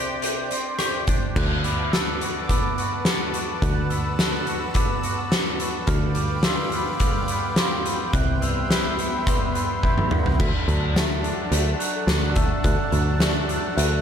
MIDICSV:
0, 0, Header, 1, 6, 480
1, 0, Start_track
1, 0, Tempo, 564440
1, 1157, Time_signature, 4, 2, 24, 8
1, 11918, End_track
2, 0, Start_track
2, 0, Title_t, "Glockenspiel"
2, 0, Program_c, 0, 9
2, 192, Note_on_c, 0, 91, 59
2, 665, Note_off_c, 0, 91, 0
2, 675, Note_on_c, 0, 91, 60
2, 1157, Note_off_c, 0, 91, 0
2, 1162, Note_on_c, 0, 90, 62
2, 1400, Note_off_c, 0, 90, 0
2, 1400, Note_on_c, 0, 86, 54
2, 1633, Note_on_c, 0, 88, 60
2, 1640, Note_off_c, 0, 86, 0
2, 2108, Note_on_c, 0, 86, 62
2, 2117, Note_off_c, 0, 88, 0
2, 2595, Note_off_c, 0, 86, 0
2, 3076, Note_on_c, 0, 90, 67
2, 3315, Note_on_c, 0, 88, 51
2, 3320, Note_off_c, 0, 90, 0
2, 3800, Note_off_c, 0, 88, 0
2, 4037, Note_on_c, 0, 86, 64
2, 4514, Note_on_c, 0, 93, 60
2, 4521, Note_off_c, 0, 86, 0
2, 4993, Note_on_c, 0, 89, 79
2, 5000, Note_off_c, 0, 93, 0
2, 5234, Note_on_c, 0, 86, 61
2, 5239, Note_off_c, 0, 89, 0
2, 5479, Note_on_c, 0, 88, 72
2, 5480, Note_off_c, 0, 86, 0
2, 5955, Note_on_c, 0, 86, 68
2, 5962, Note_off_c, 0, 88, 0
2, 6440, Note_off_c, 0, 86, 0
2, 6916, Note_on_c, 0, 90, 79
2, 7158, Note_on_c, 0, 88, 64
2, 7160, Note_off_c, 0, 90, 0
2, 7641, Note_off_c, 0, 88, 0
2, 7877, Note_on_c, 0, 84, 72
2, 8360, Note_off_c, 0, 84, 0
2, 8362, Note_on_c, 0, 91, 61
2, 8842, Note_off_c, 0, 91, 0
2, 8842, Note_on_c, 0, 95, 71
2, 9320, Note_on_c, 0, 93, 63
2, 9321, Note_off_c, 0, 95, 0
2, 9800, Note_off_c, 0, 93, 0
2, 10029, Note_on_c, 0, 90, 62
2, 10510, Note_on_c, 0, 88, 64
2, 10514, Note_off_c, 0, 90, 0
2, 10749, Note_on_c, 0, 90, 75
2, 10755, Note_off_c, 0, 88, 0
2, 10991, Note_on_c, 0, 93, 61
2, 10994, Note_off_c, 0, 90, 0
2, 11474, Note_off_c, 0, 93, 0
2, 11707, Note_on_c, 0, 90, 71
2, 11918, Note_off_c, 0, 90, 0
2, 11918, End_track
3, 0, Start_track
3, 0, Title_t, "Analog synth pad"
3, 0, Program_c, 1, 89
3, 0, Note_on_c, 1, 72, 70
3, 0, Note_on_c, 1, 74, 70
3, 0, Note_on_c, 1, 79, 66
3, 0, Note_on_c, 1, 86, 69
3, 1117, Note_off_c, 1, 86, 0
3, 1131, Note_off_c, 1, 74, 0
3, 1132, Note_off_c, 1, 72, 0
3, 1140, Note_off_c, 1, 79, 0
3, 1160, Note_on_c, 1, 86, 85
3, 1163, Note_on_c, 1, 71, 72
3, 1163, Note_on_c, 1, 78, 65
3, 1168, Note_on_c, 1, 81, 72
3, 3065, Note_off_c, 1, 86, 0
3, 3090, Note_on_c, 1, 88, 88
3, 4974, Note_off_c, 1, 71, 0
3, 4974, Note_off_c, 1, 78, 0
3, 4977, Note_off_c, 1, 81, 0
3, 4990, Note_off_c, 1, 88, 0
3, 4993, Note_on_c, 1, 79, 75
3, 4996, Note_on_c, 1, 77, 67
3, 4997, Note_on_c, 1, 86, 83
3, 5002, Note_on_c, 1, 71, 73
3, 6901, Note_off_c, 1, 77, 0
3, 6902, Note_off_c, 1, 86, 0
3, 6904, Note_off_c, 1, 71, 0
3, 6908, Note_on_c, 1, 84, 80
3, 6911, Note_on_c, 1, 76, 74
3, 6917, Note_on_c, 1, 59, 70
3, 8802, Note_off_c, 1, 79, 0
3, 8815, Note_off_c, 1, 84, 0
3, 8816, Note_off_c, 1, 76, 0
3, 8819, Note_off_c, 1, 59, 0
3, 8840, Note_on_c, 1, 69, 69
3, 8845, Note_on_c, 1, 62, 79
3, 8853, Note_on_c, 1, 78, 68
3, 8854, Note_on_c, 1, 81, 83
3, 11918, Note_off_c, 1, 62, 0
3, 11918, Note_off_c, 1, 69, 0
3, 11918, Note_off_c, 1, 78, 0
3, 11918, Note_off_c, 1, 81, 0
3, 11918, End_track
4, 0, Start_track
4, 0, Title_t, "Clean electric guitar"
4, 0, Program_c, 2, 27
4, 0, Note_on_c, 2, 48, 56
4, 0, Note_on_c, 2, 60, 50
4, 0, Note_on_c, 2, 62, 61
4, 0, Note_on_c, 2, 67, 56
4, 184, Note_off_c, 2, 62, 0
4, 194, Note_on_c, 2, 62, 48
4, 426, Note_off_c, 2, 60, 0
4, 436, Note_on_c, 2, 60, 54
4, 438, Note_off_c, 2, 48, 0
4, 668, Note_off_c, 2, 67, 0
4, 678, Note_on_c, 2, 67, 59
4, 913, Note_off_c, 2, 62, 0
4, 923, Note_on_c, 2, 62, 51
4, 1158, Note_off_c, 2, 60, 0
4, 1158, Note_off_c, 2, 67, 0
4, 1160, Note_off_c, 2, 62, 0
4, 1163, Note_on_c, 2, 50, 49
4, 1396, Note_on_c, 2, 59, 47
4, 1646, Note_on_c, 2, 69, 59
4, 1877, Note_on_c, 2, 66, 51
4, 2118, Note_off_c, 2, 59, 0
4, 2121, Note_on_c, 2, 59, 52
4, 2362, Note_off_c, 2, 66, 0
4, 2372, Note_on_c, 2, 66, 53
4, 2595, Note_off_c, 2, 69, 0
4, 2605, Note_on_c, 2, 69, 62
4, 2831, Note_off_c, 2, 66, 0
4, 2841, Note_on_c, 2, 66, 54
4, 3082, Note_off_c, 2, 50, 0
4, 3085, Note_on_c, 2, 50, 50
4, 3323, Note_off_c, 2, 59, 0
4, 3327, Note_on_c, 2, 59, 49
4, 3558, Note_off_c, 2, 69, 0
4, 3568, Note_on_c, 2, 69, 60
4, 3798, Note_off_c, 2, 66, 0
4, 3809, Note_on_c, 2, 66, 53
4, 4040, Note_off_c, 2, 59, 0
4, 4043, Note_on_c, 2, 59, 52
4, 4276, Note_off_c, 2, 66, 0
4, 4286, Note_off_c, 2, 50, 0
4, 4287, Note_on_c, 2, 66, 58
4, 4515, Note_off_c, 2, 69, 0
4, 4525, Note_on_c, 2, 69, 58
4, 4760, Note_off_c, 2, 66, 0
4, 4770, Note_on_c, 2, 66, 53
4, 5005, Note_off_c, 2, 69, 0
4, 5005, Note_on_c, 2, 50, 60
4, 5008, Note_off_c, 2, 66, 0
4, 5249, Note_on_c, 2, 55, 56
4, 5483, Note_on_c, 2, 65, 69
4, 5508, Note_off_c, 2, 59, 0
4, 5729, Note_on_c, 2, 59, 59
4, 5957, Note_off_c, 2, 55, 0
4, 5967, Note_on_c, 2, 55, 59
4, 6198, Note_off_c, 2, 59, 0
4, 6205, Note_off_c, 2, 50, 0
4, 6209, Note_on_c, 2, 59, 58
4, 6428, Note_off_c, 2, 65, 0
4, 6438, Note_on_c, 2, 65, 60
4, 6663, Note_off_c, 2, 59, 0
4, 6674, Note_on_c, 2, 59, 55
4, 6910, Note_on_c, 2, 48, 58
4, 6919, Note_off_c, 2, 59, 0
4, 6921, Note_off_c, 2, 65, 0
4, 6926, Note_off_c, 2, 55, 0
4, 7161, Note_on_c, 2, 55, 61
4, 7400, Note_on_c, 2, 64, 67
4, 7642, Note_on_c, 2, 59, 57
4, 7875, Note_off_c, 2, 55, 0
4, 7885, Note_on_c, 2, 55, 63
4, 8105, Note_off_c, 2, 59, 0
4, 8115, Note_on_c, 2, 59, 57
4, 8116, Note_off_c, 2, 48, 0
4, 8346, Note_off_c, 2, 64, 0
4, 8356, Note_on_c, 2, 64, 65
4, 8594, Note_off_c, 2, 59, 0
4, 8604, Note_on_c, 2, 59, 59
4, 8839, Note_off_c, 2, 64, 0
4, 8843, Note_off_c, 2, 55, 0
4, 8843, Note_off_c, 2, 59, 0
4, 8847, Note_on_c, 2, 50, 56
4, 9082, Note_on_c, 2, 54, 58
4, 9322, Note_on_c, 2, 57, 56
4, 9556, Note_on_c, 2, 62, 61
4, 9785, Note_off_c, 2, 57, 0
4, 9795, Note_on_c, 2, 57, 59
4, 10022, Note_off_c, 2, 54, 0
4, 10032, Note_on_c, 2, 54, 59
4, 10043, Note_off_c, 2, 50, 0
4, 10262, Note_off_c, 2, 62, 0
4, 10265, Note_on_c, 2, 62, 62
4, 10492, Note_off_c, 2, 57, 0
4, 10502, Note_on_c, 2, 57, 52
4, 10740, Note_on_c, 2, 50, 52
4, 10962, Note_off_c, 2, 54, 0
4, 10973, Note_on_c, 2, 54, 54
4, 11208, Note_off_c, 2, 57, 0
4, 11218, Note_on_c, 2, 57, 57
4, 11460, Note_off_c, 2, 62, 0
4, 11463, Note_on_c, 2, 62, 59
4, 11685, Note_off_c, 2, 57, 0
4, 11696, Note_on_c, 2, 57, 55
4, 11918, Note_off_c, 2, 50, 0
4, 11918, Note_off_c, 2, 54, 0
4, 11918, Note_off_c, 2, 57, 0
4, 11918, Note_off_c, 2, 62, 0
4, 11918, End_track
5, 0, Start_track
5, 0, Title_t, "Picked electric bass"
5, 0, Program_c, 3, 34
5, 0, Note_on_c, 3, 36, 56
5, 1122, Note_off_c, 3, 36, 0
5, 1156, Note_on_c, 3, 38, 58
5, 3048, Note_off_c, 3, 38, 0
5, 3079, Note_on_c, 3, 38, 59
5, 4969, Note_off_c, 3, 38, 0
5, 4996, Note_on_c, 3, 38, 63
5, 6886, Note_off_c, 3, 38, 0
5, 6917, Note_on_c, 3, 36, 65
5, 8804, Note_off_c, 3, 36, 0
5, 8842, Note_on_c, 3, 38, 64
5, 8934, Note_off_c, 3, 38, 0
5, 9080, Note_on_c, 3, 38, 76
5, 9629, Note_off_c, 3, 38, 0
5, 9792, Note_on_c, 3, 38, 82
5, 9978, Note_off_c, 3, 38, 0
5, 10267, Note_on_c, 3, 38, 68
5, 10637, Note_off_c, 3, 38, 0
5, 10753, Note_on_c, 3, 38, 77
5, 10847, Note_off_c, 3, 38, 0
5, 10991, Note_on_c, 3, 38, 74
5, 11542, Note_off_c, 3, 38, 0
5, 11714, Note_on_c, 3, 38, 79
5, 11898, Note_off_c, 3, 38, 0
5, 11918, End_track
6, 0, Start_track
6, 0, Title_t, "Drums"
6, 189, Note_on_c, 9, 42, 64
6, 274, Note_off_c, 9, 42, 0
6, 431, Note_on_c, 9, 42, 45
6, 516, Note_off_c, 9, 42, 0
6, 669, Note_on_c, 9, 37, 77
6, 669, Note_on_c, 9, 42, 59
6, 754, Note_off_c, 9, 37, 0
6, 754, Note_off_c, 9, 42, 0
6, 912, Note_on_c, 9, 42, 49
6, 916, Note_on_c, 9, 36, 66
6, 997, Note_off_c, 9, 42, 0
6, 1001, Note_off_c, 9, 36, 0
6, 1158, Note_on_c, 9, 36, 80
6, 1161, Note_on_c, 9, 49, 68
6, 1243, Note_off_c, 9, 36, 0
6, 1246, Note_off_c, 9, 49, 0
6, 1396, Note_on_c, 9, 42, 47
6, 1481, Note_off_c, 9, 42, 0
6, 1643, Note_on_c, 9, 38, 84
6, 1643, Note_on_c, 9, 42, 63
6, 1728, Note_off_c, 9, 38, 0
6, 1728, Note_off_c, 9, 42, 0
6, 1882, Note_on_c, 9, 42, 47
6, 1967, Note_off_c, 9, 42, 0
6, 2121, Note_on_c, 9, 36, 69
6, 2121, Note_on_c, 9, 42, 70
6, 2206, Note_off_c, 9, 36, 0
6, 2206, Note_off_c, 9, 42, 0
6, 2363, Note_on_c, 9, 42, 45
6, 2448, Note_off_c, 9, 42, 0
6, 2594, Note_on_c, 9, 38, 77
6, 2594, Note_on_c, 9, 42, 61
6, 2679, Note_off_c, 9, 38, 0
6, 2679, Note_off_c, 9, 42, 0
6, 2839, Note_on_c, 9, 42, 53
6, 2924, Note_off_c, 9, 42, 0
6, 3080, Note_on_c, 9, 42, 54
6, 3081, Note_on_c, 9, 36, 76
6, 3165, Note_off_c, 9, 42, 0
6, 3166, Note_off_c, 9, 36, 0
6, 3321, Note_on_c, 9, 42, 47
6, 3406, Note_off_c, 9, 42, 0
6, 3562, Note_on_c, 9, 38, 91
6, 3562, Note_on_c, 9, 42, 65
6, 3647, Note_off_c, 9, 38, 0
6, 3647, Note_off_c, 9, 42, 0
6, 3799, Note_on_c, 9, 42, 42
6, 3884, Note_off_c, 9, 42, 0
6, 4033, Note_on_c, 9, 42, 72
6, 4039, Note_on_c, 9, 36, 73
6, 4118, Note_off_c, 9, 42, 0
6, 4124, Note_off_c, 9, 36, 0
6, 4281, Note_on_c, 9, 42, 46
6, 4366, Note_off_c, 9, 42, 0
6, 4522, Note_on_c, 9, 38, 83
6, 4522, Note_on_c, 9, 42, 63
6, 4607, Note_off_c, 9, 38, 0
6, 4607, Note_off_c, 9, 42, 0
6, 4759, Note_on_c, 9, 42, 53
6, 4844, Note_off_c, 9, 42, 0
6, 4992, Note_on_c, 9, 42, 61
6, 4997, Note_on_c, 9, 36, 77
6, 5077, Note_off_c, 9, 42, 0
6, 5082, Note_off_c, 9, 36, 0
6, 5228, Note_on_c, 9, 42, 45
6, 5313, Note_off_c, 9, 42, 0
6, 5466, Note_on_c, 9, 38, 97
6, 5466, Note_on_c, 9, 42, 62
6, 5551, Note_off_c, 9, 38, 0
6, 5551, Note_off_c, 9, 42, 0
6, 5713, Note_on_c, 9, 42, 42
6, 5798, Note_off_c, 9, 42, 0
6, 5949, Note_on_c, 9, 42, 73
6, 5955, Note_on_c, 9, 36, 75
6, 6034, Note_off_c, 9, 42, 0
6, 6040, Note_off_c, 9, 36, 0
6, 6190, Note_on_c, 9, 42, 48
6, 6275, Note_off_c, 9, 42, 0
6, 6432, Note_on_c, 9, 38, 89
6, 6432, Note_on_c, 9, 42, 71
6, 6517, Note_off_c, 9, 38, 0
6, 6517, Note_off_c, 9, 42, 0
6, 6680, Note_on_c, 9, 42, 57
6, 6765, Note_off_c, 9, 42, 0
6, 6917, Note_on_c, 9, 42, 63
6, 6918, Note_on_c, 9, 36, 78
6, 7002, Note_off_c, 9, 42, 0
6, 7003, Note_off_c, 9, 36, 0
6, 7161, Note_on_c, 9, 42, 55
6, 7246, Note_off_c, 9, 42, 0
6, 7403, Note_on_c, 9, 38, 84
6, 7403, Note_on_c, 9, 42, 69
6, 7488, Note_off_c, 9, 38, 0
6, 7488, Note_off_c, 9, 42, 0
6, 7642, Note_on_c, 9, 42, 48
6, 7727, Note_off_c, 9, 42, 0
6, 7883, Note_on_c, 9, 36, 81
6, 7884, Note_on_c, 9, 42, 73
6, 7968, Note_off_c, 9, 36, 0
6, 7969, Note_off_c, 9, 42, 0
6, 8123, Note_on_c, 9, 42, 48
6, 8208, Note_off_c, 9, 42, 0
6, 8363, Note_on_c, 9, 36, 52
6, 8448, Note_off_c, 9, 36, 0
6, 8484, Note_on_c, 9, 47, 49
6, 8569, Note_off_c, 9, 47, 0
6, 8598, Note_on_c, 9, 45, 73
6, 8683, Note_off_c, 9, 45, 0
6, 8725, Note_on_c, 9, 43, 73
6, 8810, Note_off_c, 9, 43, 0
6, 8842, Note_on_c, 9, 36, 79
6, 8842, Note_on_c, 9, 49, 77
6, 8927, Note_off_c, 9, 36, 0
6, 8927, Note_off_c, 9, 49, 0
6, 9086, Note_on_c, 9, 42, 48
6, 9171, Note_off_c, 9, 42, 0
6, 9323, Note_on_c, 9, 38, 95
6, 9323, Note_on_c, 9, 42, 65
6, 9408, Note_off_c, 9, 38, 0
6, 9408, Note_off_c, 9, 42, 0
6, 9560, Note_on_c, 9, 42, 45
6, 9645, Note_off_c, 9, 42, 0
6, 9795, Note_on_c, 9, 42, 75
6, 9880, Note_off_c, 9, 42, 0
6, 10037, Note_on_c, 9, 42, 49
6, 10122, Note_off_c, 9, 42, 0
6, 10272, Note_on_c, 9, 38, 94
6, 10272, Note_on_c, 9, 42, 73
6, 10357, Note_off_c, 9, 38, 0
6, 10357, Note_off_c, 9, 42, 0
6, 10507, Note_on_c, 9, 42, 56
6, 10514, Note_on_c, 9, 36, 80
6, 10592, Note_off_c, 9, 42, 0
6, 10599, Note_off_c, 9, 36, 0
6, 10749, Note_on_c, 9, 42, 61
6, 10752, Note_on_c, 9, 36, 74
6, 10834, Note_off_c, 9, 42, 0
6, 10837, Note_off_c, 9, 36, 0
6, 10989, Note_on_c, 9, 42, 50
6, 11074, Note_off_c, 9, 42, 0
6, 11229, Note_on_c, 9, 38, 98
6, 11229, Note_on_c, 9, 42, 71
6, 11314, Note_off_c, 9, 38, 0
6, 11314, Note_off_c, 9, 42, 0
6, 11473, Note_on_c, 9, 42, 46
6, 11558, Note_off_c, 9, 42, 0
6, 11717, Note_on_c, 9, 42, 73
6, 11802, Note_off_c, 9, 42, 0
6, 11918, End_track
0, 0, End_of_file